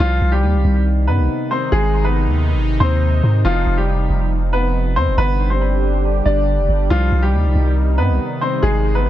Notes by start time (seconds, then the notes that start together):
0.00 C2 C3 D#3 F3 G3 D#4 F4
0.21 C2
0.32 G3 G4
0.43 D#2
0.54 C2
0.64 C2
1.07 G2 B3 B4
1.18 C2
1.51 C4 C5
1.72 G#1 G#3 G#4
2.04 B3 B4
2.26 D#2
2.53 G#1
2.80 D#2 C4 C5
3.23 G#2
3.45 F1 F3 F4
3.66 F1
3.78 G3 G4
4.10 F1
4.53 B3 B4
4.96 F2 C4 C5
5.07 F1
5.17 G1 D3 G3 B3 D4 G4 B4
5.50 C4 C5
6.25 G1 D4 D5
6.58 F1
6.69 G1
6.90 C2 C3 D#3 F3 D#4 F4
7.12 C2
7.22 G3 G4
7.33 D#2
7.44 C2
7.55 C2
7.98 G2 B3 B4
8.09 C2
8.41 C4 C5
8.63 G#1 G#3 D#4 G#4
8.95 B3 B4